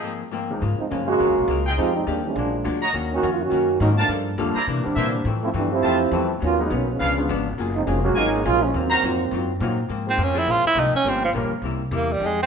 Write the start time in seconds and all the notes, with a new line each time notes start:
Already playing: F3 C4 D#4 G#4
0.03 G#2 F3 A#3 C4
0.31 G#2 F3 A#3 C4
0.50 C#2 F3 G#3 A#3 D#4
0.61 G#2 C#3 G#3 A#3 F4
0.79 F3 G#3 C4 D#4, muted upright bass stroke
0.89 F#2 C#3 F3 G#3 A#3 C#4 F4
1.07 C#3 G#3 A#3 F#4
1.20 F2 C#3 G#3 A#3 F4
1.29 C#2
1.38 A#1
1.48 C#2 C#3 G#3 A#3 F4
1.67 F4 G#4 D#5 G5
1.76 F2 F3 G#3 C4 D#4 F4 G4
1.81 D#4 G4
1.95 G3 G#3 C4 D#4
2.07 D#2 D#3 F3 G3 G#3 A#3 D4 D#4 G4
2.24 F3 G#3 A#3 D4
2.36 A#1 A#2 F#3 G#3 D4
2.64 D2 A#2 F#3 G#3 D4
2.82 F#4 C#5 D#5 A#5
2.93 D#2 D#3 A#3 C#4 F#4
3.12 D#3 A#3 C#4 F#4
3.22 F2 D#3 A#3 C#4 F#4
3.33 F4
3.42 D#3 A#3 C#4 F#4
3.50 F#2 D#3 A#3 C#4 F#4
3.80 G#2 D#3 F#3 A#3 C#4 D#4 F4 F#4
3.96 F3 A3 A#3 D4 G4 A#4 F5 A5
4.09 G2 G3 A#3 F4 A4
4.38 F2 D3 G3 A3 A#3 F4 A4
4.55 E4 C5 D5 A#5, muted upright bass stroke
4.67 C3 E3 A#3 D4
4.77 A#2
4.84 G2 D3 G3 A#3 C4 D4
4.96 A#2 C3 E3 A#3 D4 E4 C5 D5 E5
5.25 F2 A2 E3 A3 C4
5.43 F3 A3 C4 E4
5.53 F2 G2 E3 G3 A3 B3 C4 D4
5.72 F3 C4 E4 G4
5.82 F2 E3 A3 C4 F4 C5 E5 A5
6.11 E2 F2 E3 F3 G3 A3 C4 E4
6.40 D#2 G#2 F#3 A#3 B3 C#4 D#4
6.44 F4
6.59 F#3 G#3 A#3 B3 D#4
6.70 B1 G#2 D#3 F#3 A#3 B3 C#4 D#4
6.91 F3 G#3 B3 C#4
7.00 C#2 C#3 F3 B3 D4 B4 C#5 F5
7.17 D3 G#3 B3 C#4 F4
7.29 G#1 C#3 F3 B3 D4
7.58 F#1 F#3 A#3 F4 G#4
7.75 F3 G#3 C4 D#4
7.86 F1 F3 F#3 G#3 A#3 C#4 F4 G#4
8.03 C#3 F#3 G#3 A#3 C#4 F4 F#4
8.15 G#1 F#3 G#3 A#3 C#4 D#4 F4 F#4 G#4 A#4 F5 G#5
8.45 A#1 F#3 G#3 A#3 C#4 F4 G#4
8.62 F3 G#3 A#3 C#4
8.74 D#2 G#2 D#3 F#3 A#3 C4 F4
8.90 F#4 C5 F5 A#5
9.02 F2 G#2 F#3 C4 F4
9.31 F#2 G#2 F#3 C4 F4
9.60 G#2 A#2 F#3 A#3 C4 D#4 F4
9.88 G#2 F3 A#3 C4
10.07 G#3 A#3 C4 D#4 F4
10.18 F2 G#2 F3 A#3 C4
10.23 C#4
10.34 F3 A#3 C4 G#4
10.38 E4
10.46 A#1 G#2 F3 A#3 C4
10.51 F4
10.64 E4, muted upright bass stroke
10.75 C2 G#2 F3 A#3 C4
10.79 D#4
10.93 C#4, muted upright bass stroke
11.04 G1 G2 F3 G3 A#3 C#4 F4 G4
11.09 C4
11.25 F3
11.33 A#1 G2 F3 G3 A#3 C#4 F4 A#4
11.51 muted upright bass stroke
11.62 C2 C3 G3 A#3
11.66 E4
11.91 E2 C3 G3 A#3 E4
11.96 A#3
12.12 G3
12.20 F2 F3 G#3 D#4 G4
12.26 G#3
12.43 C4